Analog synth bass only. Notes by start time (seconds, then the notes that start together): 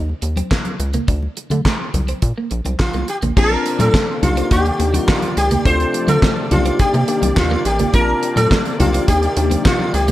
Already playing: D#2
0.22 D#2
0.80 C#2
1.08 D2
1.51 D3
1.94 C2
2.23 A#2
2.51 A#1
2.65 C2
2.80 A#1
2.94 C2
3.23 A#1
3.37 A#1
3.80 A#2
4.22 C2
4.51 D#2
4.80 D#2
5.37 C#2
5.65 D2
6.08 D3
6.51 C2
6.80 C3
6.94 C3
7.22 C2
7.37 D#2
7.65 A1
7.94 A#1
8.37 A#2
8.80 C2
9.08 D#2
9.37 D#2
9.94 C#2